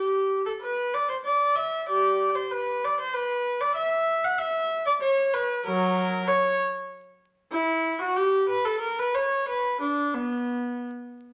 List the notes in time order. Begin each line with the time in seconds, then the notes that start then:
Already playing: G4
0.46 A4
0.62 B4
0.94 D5
1.09 C5
1.25 D5
1.56 E5
1.89 G4 D5
2.35 C5
2.51 B4
2.84 D5
3.01 C5
3.14 B4
3.60 D5
3.75 E5
4.24 F#5
4.38 E5
4.86 D5
5.02 C#5
5.34 B4
5.66 F#3 A#4
6.27 C#5
7.52 E4
8.01 F#4
8.16 G4
8.49 B4
8.65 A4
8.81 A#4
8.99 B4
9.15 C#5
9.48 B4
9.81 D4
10.14 B3